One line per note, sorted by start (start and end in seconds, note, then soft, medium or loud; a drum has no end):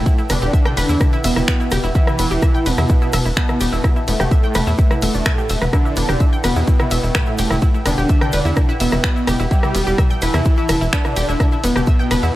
0.00 0.21 A2 loud
0.00 0.21 A3 loud
0.00 12.36 E4 medium
0.00 12.36 B4 medium
0.00 12.36 F#5 medium
0.00 1.94 G5 medium
0.06 0.14 E4 loud
0.06 0.14 E5 medium
0.06 kick loud
0.06 ride medium
0.06 shaker medium
0.18 0.21 E4 medium
0.18 0.21 E5 medium
0.18 shaker soft
0.30 0.38 E1 medium
0.30 1.15 D3 loud
0.30 0.35 B3 medium
0.30 1.15 D4 loud
0.30 0.35 B4 medium
0.30 cross-stick medium
0.30 open hi-hat loud
0.30 mid tom medium
0.30 ride medium
0.30 shaker medium
0.41 0.50 E1 medium
0.41 0.47 G4 loud
0.41 0.47 G5 medium
0.41 shaker soft
0.53 0.59 E5 medium
0.53 0.59 E6 medium
0.53 kick loud
0.53 ride medium
0.53 shaker medium
0.65 0.70 G5 loud
0.65 0.70 G6 medium
0.65 cross-stick medium
0.65 mid tom loud
0.65 shaker soft
0.77 0.85 E1 loud
0.77 0.80 B4 loud
0.77 0.80 B5 medium
0.77 open hi-hat loud
0.77 ride medium
0.77 shaker medium
0.89 0.97 E2 medium
0.89 0.94 E4 loud
0.89 0.94 E5 medium
0.89 shaker soft
1.00 1.06 E4 medium
1.00 1.06 E5 medium
1.00 kick loud
1.00 cross-stick medium
1.00 mid tom medium
1.00 ride medium
1.00 shaker medium
1.12 1.20 E4 loud
1.12 1.20 E5 medium
1.12 shaker soft
1.24 1.32 E1 loud
1.24 1.86 B2 loud
1.24 1.86 B3 loud
1.24 1.32 E5 medium
1.24 1.32 E6 medium
1.24 open hi-hat loud
1.24 ride medium
1.24 shaker loud
1.36 1.44 E1 medium
1.36 1.44 E4 medium
1.36 1.44 E5 medium
1.36 cross-stick soft
1.36 mid tom medium
1.36 shaker soft
1.48 1.53 B4 loud
1.48 1.53 B5 medium
1.48 finger snap loud
1.48 kick loud
1.48 shaker medium
1.60 1.63 E4 medium
1.60 1.63 E5 medium
1.60 shaker soft
1.71 1.79 E1 medium
1.71 1.77 G4 loud
1.71 1.77 G5 medium
1.71 cross-stick medium
1.71 open hi-hat loud
1.71 mid tom medium
1.71 ride medium
1.71 shaker medium
1.84 1.91 E1 medium
1.84 1.89 E4 loud
1.84 1.89 E5 medium
1.84 shaker soft
1.95 2.66 E3 loud
1.95 2.68 E4 loud
1.95 2.03 E4 loud
1.95 2.03 E5 medium
1.95 5.72 A5 medium
1.95 kick loud
1.95 ride medium
1.95 shaker medium
2.07 2.10 E4 medium
2.07 2.10 E5 medium
2.07 cross-stick medium
2.07 mid tom medium
2.07 shaker soft
2.19 2.27 E1 loud
2.19 2.24 B3 medium
2.19 2.24 B4 medium
2.19 open hi-hat loud
2.19 ride medium
2.19 shaker loud
2.31 2.39 E1 medium
2.31 2.36 G4 loud
2.31 2.36 G5 medium
2.31 shaker soft
2.42 2.48 E5 loud
2.42 2.48 E6 medium
2.42 kick loud
2.42 cross-stick soft
2.42 mid tom medium
2.42 ride medium
2.42 shaker medium
2.54 2.59 G5 loud
2.54 2.59 G6 medium
2.54 shaker soft
2.66 2.74 E1 loud
2.66 3.28 B2 loud
2.66 3.28 B3 loud
2.66 2.69 B4 loud
2.66 2.69 B5 medium
2.66 open hi-hat medium
2.66 ride medium
2.66 shaker loud
2.77 2.86 E2 medium
2.77 2.83 E4 loud
2.77 2.83 E5 medium
2.77 cross-stick medium
2.77 mid tom medium
2.77 shaker soft
2.89 2.95 E4 medium
2.89 2.95 E5 medium
2.89 kick loud
2.89 ride medium
2.89 shaker medium
3.01 3.09 E4 loud
3.01 3.09 E5 medium
3.01 shaker soft
3.13 3.21 E1 loud
3.13 3.21 E5 medium
3.13 3.21 E6 medium
3.13 cross-stick medium
3.13 open hi-hat loud
3.13 mid tom loud
3.13 ride medium
3.13 shaker loud
3.25 3.33 E1 medium
3.25 3.33 E4 medium
3.25 3.33 E5 medium
3.25 shaker soft
3.37 3.99 B2 loud
3.37 3.99 B3 loud
3.37 3.42 B4 loud
3.37 3.42 B5 medium
3.37 finger snap loud
3.37 kick loud
3.37 ride medium
3.37 shaker medium
3.48 3.52 E4 medium
3.48 3.52 E5 medium
3.48 cross-stick medium
3.48 mid tom medium
3.48 shaker soft
3.61 3.68 E1 loud
3.61 3.66 G4 loud
3.61 3.66 G5 medium
3.61 open hi-hat loud
3.61 ride medium
3.61 shaker loud
3.73 3.80 E1 medium
3.73 3.78 E4 loud
3.73 3.78 E5 medium
3.73 shaker soft
3.84 3.92 E4 loud
3.84 3.92 E5 medium
3.84 kick loud
3.84 cross-stick medium
3.84 mid tom loud
3.84 ride soft
3.84 shaker medium
3.96 3.99 E4 medium
3.96 3.99 E5 medium
3.96 shaker soft
4.08 4.16 E1 loud
4.08 4.93 A2 loud
4.08 4.93 A3 loud
4.08 4.13 B3 medium
4.08 4.13 B4 medium
4.08 open hi-hat loud
4.08 ride medium
4.08 shaker medium
4.20 4.27 E1 medium
4.20 4.25 G4 loud
4.20 4.25 G5 medium
4.20 cross-stick medium
4.20 mid tom loud
4.20 shaker soft
4.31 4.37 E5 loud
4.31 4.37 E6 medium
4.31 kick loud
4.31 ride soft
4.31 shaker medium
4.43 4.48 G5 loud
4.43 4.48 G6 medium
4.43 shaker soft
4.54 4.63 E1 loud
4.54 4.58 B4 loud
4.54 4.58 B5 medium
4.54 cross-stick soft
4.54 open hi-hat medium
4.54 mid tom medium
4.54 ride medium
4.54 shaker loud
4.67 4.75 E2 medium
4.67 4.72 E4 loud
4.67 4.72 E5 medium
4.67 shaker soft
4.78 4.84 E4 medium
4.78 4.84 E5 medium
4.78 kick loud
4.78 ride medium
4.78 shaker medium
4.91 4.98 E4 loud
4.91 4.98 E5 medium
4.91 cross-stick medium
4.91 mid tom medium
4.91 shaker soft
5.02 5.10 E1 loud
5.02 5.64 A2 loud
5.02 5.64 A3 loud
5.02 5.10 E5 medium
5.02 5.10 E6 medium
5.02 open hi-hat loud
5.02 ride medium
5.02 shaker medium
5.14 5.22 E1 medium
5.14 5.19 D4 medium
5.14 5.19 D5 medium
5.14 shaker soft
5.25 5.31 E4 loud
5.25 5.31 E5 medium
5.25 finger snap loud
5.25 kick loud
5.25 cross-stick medium
5.25 mid tom medium
5.25 shaker medium
5.38 5.41 G4 medium
5.38 5.41 G5 medium
5.38 shaker soft
5.49 5.58 E1 medium
5.49 5.55 E5 medium
5.49 5.55 E6 medium
5.49 open hi-hat medium
5.49 ride medium
5.49 shaker medium
5.62 5.69 E1 medium
5.62 5.69 B4 medium
5.62 5.69 B5 soft
5.62 cross-stick medium
5.62 mid tom medium
5.62 shaker soft
5.73 6.35 D3 loud
5.73 6.35 D4 loud
5.73 5.81 E4 loud
5.73 5.81 E5 medium
5.73 9.50 G5 medium
5.73 kick loud
5.73 cross-stick medium
5.73 mid tom medium
5.73 ride medium
5.73 shaker medium
5.85 5.88 E4 medium
5.85 5.88 E5 medium
5.85 shaker soft
5.96 6.05 E1 loud
5.96 6.02 B3 medium
5.96 6.02 B4 medium
5.96 open hi-hat loud
5.96 ride medium
5.96 shaker medium
6.09 6.16 E1 medium
6.09 6.14 G4 loud
6.09 6.14 G5 medium
6.09 cross-stick medium
6.09 mid tom loud
6.09 shaker soft
6.20 6.26 E5 loud
6.20 6.26 E6 medium
6.20 kick loud
6.20 ride soft
6.20 shaker medium
6.33 6.38 G5 loud
6.33 6.38 G6 medium
6.33 shaker soft
6.44 6.52 E1 loud
6.44 7.15 B2 loud
6.44 7.17 B3 loud
6.44 6.47 B4 loud
6.44 6.47 B5 medium
6.44 cross-stick medium
6.44 open hi-hat medium
6.44 mid tom medium
6.44 ride medium
6.44 shaker medium
6.56 6.64 E2 medium
6.56 6.61 E4 loud
6.56 6.61 E5 medium
6.56 shaker soft
6.67 6.73 E4 medium
6.67 6.73 E5 medium
6.67 kick loud
6.67 ride medium
6.67 shaker medium
6.79 6.87 E4 loud
6.79 6.87 E5 medium
6.79 cross-stick medium
6.79 mid tom medium
6.79 shaker soft
6.91 6.99 E1 medium
6.91 6.99 E5 medium
6.91 6.99 E6 medium
6.91 open hi-hat loud
6.91 ride medium
6.91 shaker loud
7.03 7.11 E1 medium
7.03 7.11 E4 medium
7.03 7.11 E5 medium
7.03 shaker soft
7.15 7.77 A2 loud
7.15 7.77 A3 loud
7.15 7.20 B4 loud
7.15 7.20 B5 medium
7.15 finger snap loud
7.15 kick loud
7.15 cross-stick medium
7.15 mid tom medium
7.15 ride medium
7.15 shaker medium
7.26 7.30 E4 medium
7.26 7.30 E5 medium
7.26 shaker soft
7.38 7.47 E1 medium
7.38 7.44 G4 loud
7.38 7.44 G5 medium
7.38 open hi-hat loud
7.38 ride medium
7.38 shaker loud
7.50 7.58 E1 medium
7.50 7.56 E4 loud
7.50 7.56 E5 medium
7.50 cross-stick medium
7.50 mid tom medium
7.50 shaker soft
7.62 7.70 E4 loud
7.62 7.70 E5 medium
7.62 kick loud
7.62 ride medium
7.62 shaker medium
7.74 7.77 E4 medium
7.74 7.77 E5 medium
7.74 shaker soft
7.86 7.94 E1 loud
7.86 8.71 D3 loud
7.86 7.91 B3 medium
7.86 8.71 D4 loud
7.86 7.91 B4 medium
7.86 cross-stick medium
7.86 open hi-hat loud
7.86 mid tom medium
7.86 ride medium
7.86 shaker loud
7.98 8.05 E1 medium
7.98 8.03 G4 loud
7.98 8.03 G5 medium
7.98 shaker soft
8.09 8.15 E5 loud
8.09 8.15 E6 medium
8.09 kick loud
8.09 ride medium
8.09 shaker soft
8.21 8.26 G5 loud
8.21 8.26 G6 medium
8.21 cross-stick medium
8.21 mid tom loud
8.21 shaker soft
8.32 8.41 E1 loud
8.32 8.36 B4 loud
8.32 8.36 B5 medium
8.32 open hi-hat medium
8.32 ride medium
8.32 shaker medium
8.45 8.53 E2 medium
8.45 8.50 E4 loud
8.45 8.50 E5 medium
8.45 shaker soft
8.56 8.62 E4 medium
8.56 8.62 E5 medium
8.56 kick loud
8.56 cross-stick medium
8.56 mid tom loud
8.56 ride medium
8.56 shaker medium
8.69 8.76 E4 loud
8.69 8.76 E5 medium
8.69 shaker soft
8.80 8.88 E1 medium
8.80 9.42 B2 loud
8.80 9.42 B3 loud
8.80 8.88 E5 medium
8.80 8.88 E6 medium
8.80 open hi-hat loud
8.80 ride medium
8.80 shaker medium
8.92 9.00 E1 medium
8.92 9.00 E4 medium
8.92 9.00 E5 medium
8.92 cross-stick medium
8.92 mid tom loud
8.92 shaker soft
9.04 9.09 B4 loud
9.04 9.09 B5 medium
9.04 finger snap loud
9.04 kick loud
9.04 ride medium
9.04 shaker medium
9.16 9.19 E4 medium
9.16 9.19 E5 medium
9.16 shaker soft
9.27 9.36 E1 loud
9.27 9.33 G4 loud
9.27 9.33 G5 medium
9.27 cross-stick medium
9.27 open hi-hat medium
9.27 mid tom loud
9.27 ride medium
9.27 shaker medium
9.39 9.47 E1 medium
9.39 9.45 E4 loud
9.39 9.45 E5 medium
9.39 shaker soft
9.51 10.13 G3 loud
9.51 9.59 E4 loud
9.51 10.13 G4 loud
9.51 9.59 E5 medium
9.51 12.36 A5 medium
9.51 kick loud
9.51 ride medium
9.51 shaker soft
9.63 9.66 E4 medium
9.63 9.66 E5 medium
9.63 cross-stick medium
9.63 mid tom loud
9.63 shaker soft
9.75 9.83 E1 loud
9.75 9.80 B3 medium
9.75 9.80 B4 medium
9.75 open hi-hat loud
9.75 ride medium
9.75 shaker medium
9.87 9.94 E1 medium
9.87 9.92 G4 loud
9.87 9.92 G5 medium
9.87 shaker soft
9.98 10.04 E5 loud
9.98 10.04 E6 medium
9.98 kick loud
9.98 cross-stick medium
9.98 mid tom loud
9.98 ride medium
9.98 shaker medium
10.10 10.15 G5 loud
10.10 10.15 G6 medium
10.10 shaker soft
10.22 10.30 E1 loud
10.22 10.84 E3 loud
10.22 10.84 E4 loud
10.22 10.25 B4 loud
10.22 10.25 B5 medium
10.22 open hi-hat medium
10.22 ride medium
10.22 shaker medium
10.34 10.42 E2 medium
10.34 10.39 E4 medium
10.34 10.39 E5 medium
10.34 cross-stick medium
10.34 mid tom loud
10.34 shaker soft
10.45 10.51 E4 medium
10.45 10.51 E5 medium
10.45 kick loud
10.45 ride medium
10.45 shaker medium
10.57 10.65 E4 loud
10.57 10.65 E5 medium
10.57 shaker soft
10.69 10.77 E1 loud
10.69 10.77 E5 medium
10.69 10.77 E6 medium
10.69 cross-stick medium
10.69 open hi-hat loud
10.69 mid tom loud
10.69 ride medium
10.69 shaker loud
10.81 10.89 E1 medium
10.81 10.89 E4 medium
10.81 10.89 E5 medium
10.81 shaker soft
10.93 11.54 D3 loud
10.93 11.54 D4 loud
10.93 10.98 B4 loud
10.93 10.98 B5 medium
10.93 finger snap loud
10.93 kick loud
10.93 shaker medium
11.05 11.08 E4 medium
11.05 11.08 E5 medium
11.05 cross-stick medium
11.05 mid tom medium
11.05 shaker soft
11.16 11.24 E1 medium
11.16 11.22 G4 loud
11.16 11.22 G5 medium
11.16 open hi-hat medium
11.16 ride medium
11.16 shaker medium
11.29 11.36 E1 medium
11.29 11.33 E4 loud
11.29 11.33 E5 medium
11.29 shaker soft
11.40 11.48 E4 loud
11.40 11.48 E5 medium
11.40 kick loud
11.40 cross-stick medium
11.40 mid tom loud
11.40 ride medium
11.40 shaker soft
11.52 11.55 E4 medium
11.52 11.55 E5 medium
11.52 shaker soft
11.64 11.72 E1 loud
11.64 12.36 B2 loud
11.64 12.36 B3 loud
11.64 11.69 B3 medium
11.64 11.69 B4 medium
11.64 open hi-hat loud
11.64 ride medium
11.64 shaker loud
11.76 11.83 E1 medium
11.76 11.81 G4 loud
11.76 11.81 G5 medium
11.76 cross-stick medium
11.76 mid tom medium
11.76 shaker soft
11.87 11.92 E5 medium
11.87 11.93 E6 medium
11.87 kick loud
11.87 ride medium
11.87 shaker medium
11.99 12.04 G5 loud
11.99 12.04 G6 medium
11.99 shaker soft
12.11 12.19 E1 loud
12.11 12.14 B4 loud
12.11 12.14 B5 medium
12.11 cross-stick soft
12.11 open hi-hat medium
12.11 mid tom medium
12.11 ride medium
12.11 shaker medium
12.23 12.31 E2 medium
12.23 12.28 E4 loud
12.23 12.28 E5 medium
12.23 shaker soft